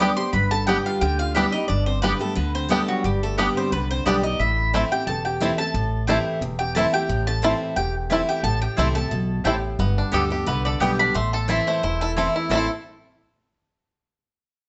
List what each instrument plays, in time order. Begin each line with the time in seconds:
0.00 steel-string acoustic guitar D3 G3 B3 G4, five-string banjo B3 D4 G4, mandolin G4 D5 G5 D6, resonator guitar played with a steel bar D5
0.17 steel-string acoustic guitar B3 G4, resonator guitar played with a steel bar C5, mandolin C6
0.33 upright bass G1, steel-string acoustic guitar G2, resonator guitar played with a steel bar B4, mandolin B5
0.51 resonator guitar played with a steel bar A4, mandolin A5
0.67 steel-string acoustic guitar D3 G3 B3 G4, mandolin B3 G4 D5 G5, five-string banjo B3 D4 G4, resonator guitar played with a steel bar G4
0.86 resonator guitar played with a steel bar F4, mandolin F5
1.01 upright bass D2, steel-string acoustic guitar D3, resonator guitar played with a steel bar G4, mandolin G5
1.19 resonator guitar played with a steel bar F4, mandolin F5
1.34 steel-string acoustic guitar D3 G3 B3 G4, mandolin B3 G4 D5 E5 G5, five-string banjo B3 D4 G4, resonator guitar played with a steel bar E4
1.52 steel-string acoustic guitar B3 G4, resonator guitar played with a steel bar D#4, mandolin D#5
1.68 upright bass G1, steel-string acoustic guitar G2, resonator guitar played with a steel bar D4, mandolin D5
1.86 resonator guitar played with a steel bar C4, mandolin C5
2.02 steel-string acoustic guitar D3 G3 B3 G4, resonator guitar played with a steel bar B3, mandolin B3 G4 B4 D5 G5, five-string banjo B3 D4 G4
2.19 resonator guitar played with a steel bar A3, steel-string acoustic guitar B3 G4, mandolin A4
2.35 upright bass D2, steel-string acoustic guitar D3, resonator guitar played with a steel bar B3, mandolin B4
2.54 resonator guitar played with a steel bar C4, mandolin C5
2.69 steel-string acoustic guitar D3 G3 B3 G4, resonator guitar played with a steel bar A3, mandolin B3 G4 A4 D5 G5, five-string banjo B3 D4 G4
2.88 resonator guitar played with a steel bar F#3, mandolin F#4
3.04 upright bass G1, steel-string acoustic guitar G2, resonator guitar played with a steel bar G3, mandolin G4
3.23 resonator guitar played with a steel bar A3, mandolin A4
3.38 steel-string acoustic guitar D3 G3 B3 G4, mandolin B3 G4 B4 D5 G5, resonator guitar played with a steel bar B3, five-string banjo B3 D4 G4
3.57 resonator guitar played with a steel bar C4, mandolin C5
3.72 upright bass C2, steel-string acoustic guitar D3, resonator guitar played with a steel bar B3, mandolin B4
3.90 resonator guitar played with a steel bar C4, mandolin C5
4.05 upright bass B1, steel-string acoustic guitar D3 G3 B3 G4, mandolin B3 G4 D5 G5, five-string banjo B3 D4 G4, resonator guitar played with a steel bar D4
4.23 steel-string acoustic guitar B3 G4, resonator guitar played with a steel bar D#4, mandolin D#5
4.39 upright bass A1, steel-string acoustic guitar A2, resonator guitar played with a steel bar E4, mandolin E5
4.73 steel-string acoustic guitar E3 A3 C4 E4, five-string banjo A3 E4, mandolin C4 E4 C5 A5
4.91 steel-string acoustic guitar C4 E4, resonator guitar played with a steel bar G4, mandolin G5
5.07 upright bass E1, steel-string acoustic guitar E2, resonator guitar played with a steel bar A4, mandolin A5
5.25 resonator guitar played with a steel bar G4, mandolin G5
5.40 steel-string acoustic guitar E3 A3 C4 E4, five-string banjo A3 E4, mandolin C4 E4 C5 A5
5.58 steel-string acoustic guitar C4 E4, resonator guitar played with a steel bar A4, mandolin A5
5.74 upright bass A1, steel-string acoustic guitar A2
6.07 steel-string acoustic guitar E3 A3 C4 E4, five-string banjo A3 E4, mandolin C4 E4 C5 G5 A5, resonator guitar played with a steel bar G4
6.41 upright bass E1, steel-string acoustic guitar E2
6.59 resonator guitar played with a steel bar G4, mandolin G5
6.75 steel-string acoustic guitar E3 A3 C4 E4, five-string banjo A3 E4, mandolin C4 E4 C5 A5, resonator guitar played with a steel bar A4
6.93 steel-string acoustic guitar C4 E4, resonator guitar played with a steel bar G4, mandolin G5
7.09 upright bass A1, steel-string acoustic guitar A2
7.27 resonator guitar played with a steel bar A4, mandolin A5
7.42 steel-string acoustic guitar E3 A3 C4 E4, five-string banjo A3 E4, mandolin C4 E4 C5 A5
7.76 upright bass E1, steel-string acoustic guitar E2, resonator guitar played with a steel bar G4, mandolin G5
8.10 steel-string acoustic guitar E3 A3 C4 E4, five-string banjo A3 E4, mandolin C4 E4 C5 A5
8.29 resonator guitar played with a steel bar G4, mandolin G5
8.43 upright bass A1, steel-string acoustic guitar A2, resonator guitar played with a steel bar A4, mandolin A5
8.62 resonator guitar played with a steel bar G4, mandolin G5
8.77 upright bass C2, steel-string acoustic guitar E3 A3 C4 E4, five-string banjo A3 E4, mandolin C4 E4 C5 A5
8.95 steel-string acoustic guitar C4 E4, resonator guitar played with a steel bar A4, mandolin A5
9.11 upright bass B1, steel-string acoustic guitar B2
9.44 upright bass A1, steel-string acoustic guitar A2, five-string banjo A3 E4, mandolin C4 E4 C5 G5 A5, resonator guitar played with a steel bar G4
9.79 upright bass G1, steel-string acoustic guitar G2, five-string banjo B3
9.98 five-string banjo D4
10.12 upright bass D2, steel-string acoustic guitar D3 G3 B3 G4, mandolin B3 G4 D5 G5, five-string banjo A4
10.30 steel-string acoustic guitar B3 G4, five-string banjo G4
10.46 upright bass C2, steel-string acoustic guitar D3, five-string banjo B3, mandolin B4
10.65 five-string banjo A4, mandolin D5
10.80 upright bass B1, steel-string acoustic guitar D3 G3 B3 G4, mandolin B3 G4 D5 G5, five-string banjo G4
10.99 five-string banjo D4, mandolin B5
11.14 upright bass A1, steel-string acoustic guitar A2, five-string banjo A3, mandolin C6
11.33 five-string banjo A4, mandolin A5
11.48 steel-string acoustic guitar E3 A3 C4 E4, mandolin C4 E4 C5 E5 A5, five-string banjo E4
11.67 five-string banjo A3, mandolin C5
11.83 upright bass E1, steel-string acoustic guitar E2, five-string banjo E4, mandolin C5
12.01 five-string banjo E4, mandolin A4
12.16 steel-string acoustic guitar E3 A3 C4 E4, mandolin C4 E4 C5 A5, five-string banjo A4
12.36 five-string banjo E4
12.49 upright bass A1, steel-string acoustic guitar A2 E3 A3 C4 E4, five-string banjo A3, mandolin C4 E4 A4 C5 A5
12.53 five-string banjo C4 E4 A4